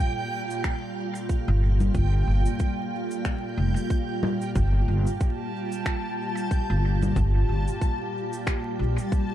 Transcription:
Already playing: ambient pad A#2 G3 F4 A4, synth texture G5
0.51 cabasa
0.64 finger snap, kick, cabasa
1.15 cabasa
1.29 kick, cabasa
1.48 upright bass G1
1.81 low conga, cabasa
1.94 upright bass G1, kick, cabasa
2.27 upright bass G1
2.46 cabasa
2.59 kick, cabasa
3.11 cabasa
3.25 finger snap, kick, cabasa
3.57 upright bass F1, ambient pad G4
3.77 cabasa
3.90 kick, cabasa
4.23 low conga
4.41 cabasa
4.55 upright bass G1, synth texture A5, kick, cabasa
4.88 upright bass G1
5.07 cabasa
5.21 kick, cabasa
5.72 cabasa
5.86 finger snap, kick, cabasa
6.37 cabasa
6.51 kick, cabasa
6.70 upright bass G1
7.03 low conga, cabasa
7.16 upright bass G1, kick, cabasa
7.49 upright bass G1
7.68 cabasa
7.81 kick, cabasa
8.33 cabasa
8.47 finger snap, kick, cabasa
8.79 upright bass A#1
8.98 cabasa
9.12 kick, cabasa

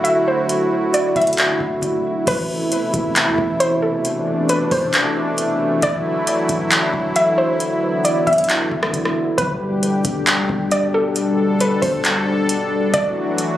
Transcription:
Already playing: 808-style bass D1, analog synth pad D3 F#3 A3 E4 F#4
0.04 synth pluck E5, closed hi-hat
0.28 synth pluck C5
0.49 closed hi-hat
0.94 synth pluck D5, closed hi-hat
1.16 808-style bass D1, synth pluck E5, kick, closed hi-hat
1.22 closed hi-hat
1.27 closed hi-hat
1.33 closed hi-hat
1.38 808-style bass C1, clap, closed hi-hat
1.60 808-style bass D1, kick
1.82 808-style bass D1, kick, closed hi-hat
2.27 808-style bass A1, analog synth pad B2 C3 E3 A3 E4, synth pluck B4, kick, closed hi-hat, crash
2.72 closed hi-hat
2.94 808-style bass A1, kick, closed hi-hat
3.16 clap, closed hi-hat
3.27 808-style bass E2
3.38 808-style bass A1, kick
3.60 synth pluck C5, closed hi-hat
3.82 synth pluck A4
4.05 analog synth pad D4, closed hi-hat
4.49 synth pluck B4, closed hi-hat
4.71 808-style bass A1, synth pluck C5, kick, open hi-hat
4.94 clap, closed hi-hat
5.38 closed hi-hat
5.82 808-style bass D1, analog synth pad D3 F#3 E4, synth pluck D5, kick, closed hi-hat
6.27 closed hi-hat
6.49 808-style bass D1, kick, closed hi-hat
6.71 clap, closed hi-hat
6.94 808-style bass D1, kick
7.16 synth pluck E5, closed hi-hat
7.38 synth pluck C5
7.60 analog synth pad B3, closed hi-hat
8.05 synth pluck D5, closed hi-hat
8.27 808-style bass D1, synth pluck E5, kick, closed hi-hat
8.33 closed hi-hat
8.38 closed hi-hat
8.44 closed hi-hat
8.49 808-style bass C1, clap, closed hi-hat
8.72 808-style bass D1, kick
8.83 cross-stick
8.93 808-style bass D1, kick, closed hi-hat
9.05 cross-stick
9.38 808-style bass G1, analog synth pad B2 G3 D4 G4, synth pluck B4, kick, closed hi-hat
9.83 closed hi-hat
10.05 808-style bass G1, kick, closed hi-hat
10.27 clap, closed hi-hat
10.38 808-style bass D2
10.49 808-style bass G1, kick
10.71 synth pluck D5, closed hi-hat
10.94 synth pluck A4
11.16 analog synth pad A4, closed hi-hat
11.60 synth pluck B4, closed hi-hat
11.82 808-style bass G1, synth pluck C5, kick, open hi-hat
12.05 clap, closed hi-hat
12.49 closed hi-hat
12.94 808-style bass D1, analog synth pad E3 F#3 A3 F#4, synth pluck D5, kick, closed hi-hat
13.38 closed hi-hat

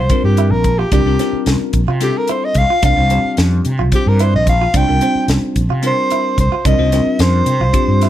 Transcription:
Already playing: clean electric guitar F4, soprano saxophone C5
0.10 tine electric piano G3 C4 D4 F4 A#4, kick, closed hi-hat
0.24 fretless electric bass G2, soprano saxophone G4
0.37 clean electric guitar E4, closed hi-hat
0.50 fretless electric bass A#1, soprano saxophone A#4
0.64 kick, closed hi-hat
0.79 clean electric guitar F4, soprano saxophone G4
0.91 fretless electric bass C2, tine electric piano G3 C4 D4 F4 A#4, clean electric guitar D4, soprano saxophone G4, kick, closed hi-hat
1.05 fretless electric bass C2, tine electric piano G3 C4 D4 F4 A#4
1.19 tine electric piano G3 C4 D4 F4 A#4, clean electric guitar C4, snare, closed hi-hat
1.33 muted fretless electric bass stroke
1.46 fretless electric bass C2, snare, closed hi-hat
1.60 muted fretless electric bass stroke
1.73 fretless electric bass A#1, kick, closed hi-hat
1.88 fretless electric bass C3, clean electric guitar F4
2.00 tine electric piano G3 C4 D4 F4 A4, soprano saxophone G4, snare, closed hi-hat
2.18 soprano saxophone A#4
2.28 clean electric guitar E4, soprano saxophone C5, closed hi-hat
2.45 soprano saxophone D#5
2.54 fretless electric bass C2, soprano saxophone F5, kick, closed hi-hat
2.69 clean electric guitar F4, muted fretless electric bass stroke
2.82 fretless electric bass C2, tine electric piano G3 C4 D4 F4 A#4, clean electric guitar D4, soprano saxophone F5, kick, closed hi-hat
2.95 fretless electric bass C2, tine electric piano G3 C4 D4 F4 C5
3.10 tine electric piano G3 C4 D4 F4 G4, clean electric guitar C4, closed hi-hat
3.24 muted fretless electric bass stroke
3.37 fretless electric bass F2, snare, closed hi-hat
3.65 fretless electric bass C3, closed hi-hat
3.79 fretless electric bass C2, clean electric guitar F4
3.92 tine electric piano G3 C4 D4 F4 C5, soprano saxophone G4, kick, closed hi-hat
4.06 fretless electric bass G2, soprano saxophone A#4
4.19 clean electric guitar E4, soprano saxophone C5, closed hi-hat
4.34 fretless electric bass A#1, soprano saxophone D#5
4.47 soprano saxophone F5, kick, closed hi-hat
4.62 clean electric guitar F4
4.74 fretless electric bass C2, tine electric piano G3 C4 D4 F4 C5, clean electric guitar D4, soprano saxophone G5, kick, closed hi-hat
4.88 fretless electric bass C2, tine electric piano G3 C4 D4 F4 A#4
5.01 tine electric piano G3 C4 D4 F4 C5, clean electric guitar C4, closed hi-hat
5.15 muted fretless electric bass stroke
5.28 fretless electric bass C2, snare, closed hi-hat
5.56 fretless electric bass A#1, kick, closed hi-hat
5.69 fretless electric bass C3, clean electric guitar F4
5.82 tine electric piano G3 C4 D4 F4 A#4, closed hi-hat
5.87 soprano saxophone C5
6.11 clean electric guitar E4, closed hi-hat
6.38 fretless electric bass C2, soprano saxophone C5, kick, closed hi-hat
6.52 clean electric guitar F4, muted fretless electric bass stroke
6.65 fretless electric bass C2, tine electric piano G3 C4 D4 F4 A#4, clean electric guitar D4, soprano saxophone D#5, kick, closed hi-hat
6.78 fretless electric bass C2, tine electric piano G3 C4 D4 F4 C5
6.92 tine electric piano G3 C4 D4 F4 A#4, clean electric guitar C4, snare, closed hi-hat
7.06 muted fretless electric bass stroke
7.19 fretless electric bass F2, soprano saxophone C5, snare, closed hi-hat
7.46 fretless electric bass C3, closed hi-hat
7.60 fretless electric bass C2, clean electric guitar F4
7.73 tine electric piano G3 C4 D4 F4 G4, kick, closed hi-hat
7.88 fretless electric bass G2
8.02 clean electric guitar E4, snare, closed hi-hat

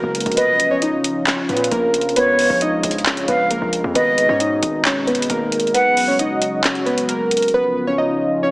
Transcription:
Already playing: analog synth pad C#3 F#3 G#3 F#4, synth keys A#3 A#4
0.04 808-style bass F#1
0.15 closed hi-hat
0.20 closed hi-hat
0.26 808-style bass A#1, closed hi-hat
0.32 closed hi-hat
0.37 analog synth pad F3 C#4 F4, synth keys B3 B4, flute D#5, closed hi-hat
0.60 closed hi-hat
0.71 synth keys C#4 C#5
0.82 synth keys D#4 D#5, closed hi-hat
1.04 closed hi-hat
1.27 synth keys C#4 C#5, clap, closed hi-hat
1.49 808-style bass A#2, synth keys B3 B4, closed hi-hat
1.57 closed hi-hat
1.64 closed hi-hat
1.71 808-style bass A#1, synth keys A#3 A#4, closed hi-hat
1.94 closed hi-hat
2.01 closed hi-hat
2.09 closed hi-hat
2.16 analog synth pad G#3, synth keys B3 B4, flute C#5, closed hi-hat
2.39 open hi-hat
2.50 808-style bass A#1, synth keys C#4 C#5
2.61 synth keys D#4 D#5, closed hi-hat
2.83 808-style bass A#1, closed hi-hat
2.91 closed hi-hat
2.98 closed hi-hat
3.06 synth keys C#4 C#5, clap, closed hi-hat
3.17 closed hi-hat
3.28 808-style bass A#1, synth keys B3 B4, flute F5, closed hi-hat
3.50 synth keys A#3 A#4, closed hi-hat
3.62 808-style bass A#1
3.73 closed hi-hat
3.84 808-style bass F2
3.95 808-style bass G#1, analog synth pad B2 D#4, synth keys B3 B4, flute D#5, closed hi-hat
4.18 closed hi-hat
4.29 808-style bass G#2, synth keys C#4 C#5
4.40 synth keys D#4 D#5, closed hi-hat
4.63 808-style bass G#1, closed hi-hat
4.85 synth keys C#4 C#5, clap, closed hi-hat
5.07 synth keys B3 B4, closed hi-hat
5.15 closed hi-hat
5.22 closed hi-hat
5.30 808-style bass G#1, synth keys A#3 A#4, closed hi-hat
5.52 closed hi-hat
5.60 closed hi-hat
5.67 closed hi-hat
5.74 analog synth pad C#3 F#3 F#4, synth keys B3 B4, flute F#5, closed hi-hat
5.97 open hi-hat
6.08 synth keys C#4 C#5
6.19 synth keys D#4 D#5, closed hi-hat
6.42 closed hi-hat
6.64 synth keys C#4 C#5, clap, closed hi-hat
6.75 closed hi-hat
6.86 synth keys B3 B4, closed hi-hat
6.98 closed hi-hat
7.09 synth keys A#3 A#4, closed hi-hat
7.31 closed hi-hat
7.37 closed hi-hat
7.42 closed hi-hat
7.48 closed hi-hat
7.54 analog synth pad C#3 F3 C#4 F4, synth keys B3 B4
7.87 synth keys C#4 C#5
7.98 synth keys D#4 D#5
8.43 synth keys C#4 C#5

